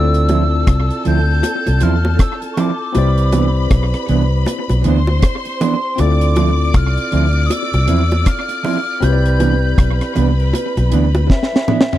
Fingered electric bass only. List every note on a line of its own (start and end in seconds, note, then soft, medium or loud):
0.00 0.64 D2 loud
0.68 0.89 C2 loud
1.07 1.41 D2 medium
1.68 1.81 C2 medium
1.82 2.17 E2 loud
2.96 3.68 C2 loud
3.71 3.92 B1 medium
4.09 4.44 C2 medium
4.70 4.84 B1 loud
4.86 5.20 D2 loud
5.99 6.71 D2 loud
6.75 6.96 C2 medium
7.13 7.48 D2 loud
7.74 7.87 C2 medium
7.89 8.23 E2 loud
9.03 9.74 C2 loud
9.78 9.99 B1 medium
10.17 10.51 C2 loud
10.77 10.91 B1 medium
10.92 11.27 D2 loud